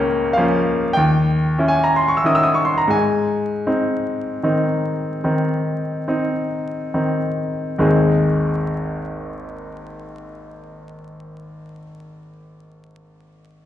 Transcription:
0.00 0.99 C#2 medium
0.00 0.33 A#3 soft
0.00 0.33 C#4 soft
0.00 0.36 G5 medium
0.33 0.92 F3 soft
0.33 0.94 F5 medium
0.37 0.92 A#3 soft
0.37 0.92 C#4 soft
0.93 1.57 D#2 medium
0.93 1.70 G5 medium
1.58 2.20 C#4 soft
1.58 2.20 E4 soft
1.68 1.86 G#5 medium
1.84 1.99 A#5 soft
1.96 2.10 C6 soft
2.08 2.20 C#6 medium
2.17 2.28 E6 soft
2.24 2.90 D#3 soft
2.24 2.90 C#4 soft
2.24 2.90 E4 soft
2.24 2.37 D#6 soft
2.35 2.46 E6 medium
2.43 2.55 D#6 soft
2.54 2.67 C#6 soft
2.65 2.79 C6 soft
2.78 2.92 A#5 soft
2.88 3.62 G#2 soft
2.88 6.93 G#5 medium
3.67 4.39 C4 soft
3.67 4.39 D#4 soft
4.43 5.19 D#3 soft
4.43 5.19 C4 soft
4.43 5.20 D#4 soft
5.24 6.04 D#3 soft
5.24 6.04 C4 soft
5.24 6.04 D#4 soft
6.08 6.91 C4 soft
6.08 6.91 D#4 soft
6.94 7.74 D#3 soft
6.94 7.74 C4 soft
6.94 7.74 D#4 soft
7.78 11.82 G#1 soft
7.78 11.83 D#2 soft
7.78 11.83 G#3 soft
7.78 11.83 C4 soft
7.78 11.84 D#4 soft
7.78 11.84 G#4 soft

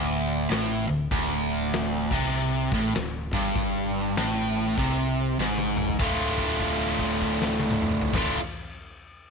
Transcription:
0.00 0.46 D1 medium
0.00 0.50 D2 loud
0.27 open hi-hat medium
0.50 0.86 A1 medium
0.50 0.88 A2 loud
0.50 snare loud
0.50 open hi-hat medium
0.89 1.10 D1 medium
0.89 1.07 D2 medium
0.89 open hi-hat medium
1.11 2.07 D1 medium
1.11 2.12 D2 loud
1.11 kick loud
1.11 open hi-hat medium
1.50 open hi-hat medium
1.72 snare loud
1.72 open hi-hat medium
2.11 2.68 C2 medium
2.11 2.72 C3 medium
2.11 kick loud
2.11 open hi-hat medium
2.34 open hi-hat medium
2.72 2.93 A1 loud
2.72 2.95 A2 loud
2.72 kick medium
2.72 open hi-hat medium
2.94 3.31 D1 medium
2.94 3.26 D2 medium
2.94 snare loud
2.94 open hi-hat medium
3.33 4.13 G1 medium
3.33 4.17 G2 loud
3.33 kick loud
3.33 open hi-hat medium
3.56 kick loud
3.56 open hi-hat medium
3.94 open hi-hat medium
4.16 4.74 A1 medium
4.16 4.78 A2 loud
4.16 snare loud
4.16 open hi-hat medium
4.55 open hi-hat medium
4.78 5.35 C2 medium
4.78 5.39 C3 loud
4.78 kick loud
4.78 open hi-hat medium
5.16 open hi-hat medium
5.39 5.96 G#1 medium
5.39 5.98 G#2 loud
5.39 snare medium
5.58 high tom medium
5.77 mid tom medium
5.88 floor tom medium
5.99 8.00 D1 medium
5.99 8.13 D2 loud
5.99 8.14 A2 loud
5.99 8.15 D3 loud
5.99 8.16 A3 loud
5.99 8.17 F4 loud
5.99 kick loud
5.99 crash medium
6.38 kick medium
6.38 crash soft
6.49 crash soft
6.60 kick medium
6.60 crash soft
6.80 crash soft
6.99 kick medium
6.99 crash soft
7.10 crash medium
7.21 kick medium
7.21 crash medium
7.42 snare medium
7.59 high tom medium
7.71 mid tom medium
7.82 mid tom loud
8.01 floor tom loud
8.13 8.35 D1 medium
8.13 8.37 D2 loud
8.13 8.38 A2 loud
8.13 8.38 D3 loud
8.13 8.39 A3 loud
8.13 kick loud
8.13 snare loud
8.13 crash loud
8.17 8.39 F4 loud

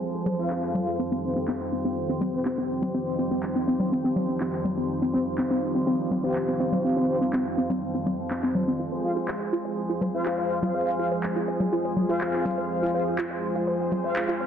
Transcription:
0.00 8.78 F2 medium
0.00 0.95 F3 medium
0.00 8.78 F3 medium
0.00 0.95 G#3 medium
0.00 8.76 C4 medium
0.00 0.95 G#4 medium
0.00 8.75 C5 medium
0.14 0.22 F4 medium
0.26 0.38 G#4 loud
0.26 low conga medium
0.38 0.98 F4 medium
0.38 0.98 C5 medium
0.38 0.98 F5 loud
0.50 0.59 C5 medium
0.50 clap loud
0.62 0.71 G#4 medium
0.62 clap soft
0.75 low conga medium
0.87 0.95 G#4 medium
0.99 8.76 D#3 medium
0.99 8.75 G3 medium
0.99 1.08 C4 medium
0.99 4.85 G4 medium
1.11 1.20 C4 loud
1.23 1.31 C4 medium
1.23 1.31 G4 medium
1.23 1.31 C5 medium
1.36 1.44 C4 medium
1.48 1.56 C4 medium
1.48 clap loud
1.72 1.81 C4 medium
1.85 1.93 C4 loud
2.09 2.17 C4 medium
2.21 2.29 C4 loud
2.21 low conga medium
2.33 3.16 C4 medium
2.33 3.16 G4 medium
2.33 3.16 C5 loud
2.45 2.54 C4 medium
2.45 clap loud
2.58 2.66 C4 medium
2.82 2.90 C4 medium
2.82 low conga medium
2.94 3.03 C4 loud
3.18 3.26 C4 medium
3.18 3.27 C4 medium
3.18 3.26 G4 medium
3.18 3.26 C5 medium
3.31 3.39 C4 loud
3.43 clap loud
3.55 3.64 C4 medium
3.67 3.76 C4 loud
3.80 low conga medium
3.92 4.00 C4 medium
4.04 4.12 C4 loud
4.16 low conga medium
4.29 4.37 C4 medium
4.40 4.49 C4 loud
4.40 clap loud
4.53 clap soft
4.65 4.73 C4 medium
4.65 low conga medium
4.77 4.86 C4 medium
4.89 8.76 F4 medium
5.02 5.10 C4 medium
5.14 5.22 C4 loud
5.14 5.22 C4 medium
5.14 5.22 G4 medium
5.14 5.22 C5 medium
5.38 5.47 C4 medium
5.38 clap loud
5.50 5.59 C4 loud
5.75 5.83 C4 medium
5.87 5.95 C4 loud
6.11 6.20 C4 medium
6.11 low conga medium
6.23 7.06 C4 medium
6.23 6.32 C4 loud
6.23 7.06 G4 medium
6.23 7.06 C5 loud
6.35 clap loud
6.48 6.56 C4 medium
6.60 6.68 C4 loud
6.72 low conga medium
6.84 6.93 C4 medium
6.97 7.05 C4 loud
7.09 7.17 C4 medium
7.09 7.17 G4 medium
7.09 7.17 C5 medium
7.21 7.29 C4 medium
7.33 7.42 C4 loud
7.33 clap loud
7.57 7.66 C4 medium
7.70 7.78 C4 loud
7.70 low conga medium
7.94 8.03 C4 medium
8.06 8.15 C4 medium
8.06 low conga medium
8.31 8.39 C4 medium
8.31 clap loud
8.43 8.51 C4 loud
8.43 clap soft
8.55 low conga medium
8.67 8.76 C4 medium
8.79 14.47 F2 medium
8.79 14.47 F3 medium
8.79 14.47 G#3 medium
8.79 14.47 C4 medium
8.79 8.88 F4 medium
8.79 14.47 G#4 medium
8.79 14.47 C5 medium
8.92 9.03 C5 medium
9.04 9.12 F4 medium
9.04 9.12 C5 medium
9.04 9.12 F5 medium
9.16 9.25 F4 medium
9.28 9.40 C5 medium
9.28 clap loud
9.53 9.61 F4 medium
9.65 9.76 C5 medium
9.89 9.98 F4 medium
10.01 10.13 C5 medium
10.01 low conga medium
10.14 10.96 F4 medium
10.14 10.96 C5 medium
10.14 10.96 F5 medium
10.26 10.34 F4 medium
10.26 clap loud
10.38 10.50 C5 medium
10.62 10.71 F4 medium
10.62 low conga medium
10.75 10.86 C5 medium
10.99 11.07 F4 medium
10.99 11.08 F4 medium
10.99 11.07 C5 medium
10.99 11.07 F5 medium
11.11 11.23 C5 medium
11.23 clap loud
11.36 11.44 F4 medium
11.48 11.60 C5 medium
11.60 low conga medium
11.72 11.81 F4 medium
11.85 11.96 C5 medium
11.96 low conga medium
12.09 12.91 F4 medium
12.09 12.17 F4 medium
12.09 12.91 C5 medium
12.09 12.91 F5 loud
12.21 12.33 C5 medium
12.21 clap loud
12.33 clap soft
12.45 12.54 F4 medium
12.45 low conga medium
12.58 12.69 C5 medium
12.82 12.90 F4 medium
12.94 13.02 F4 medium
12.94 13.02 C5 medium
12.94 13.06 C5 medium
12.94 13.02 F5 medium
13.18 13.27 F4 medium
13.18 clap loud
13.31 13.42 C5 medium
13.55 13.64 F4 medium
13.67 13.79 C5 medium
13.92 14.00 F4 medium
13.92 low conga medium
14.04 14.47 F4 medium
14.04 14.15 C5 medium
14.04 14.47 C5 medium
14.04 14.47 F5 loud
14.16 clap loud
14.28 14.37 F4 medium
14.40 14.47 C5 medium

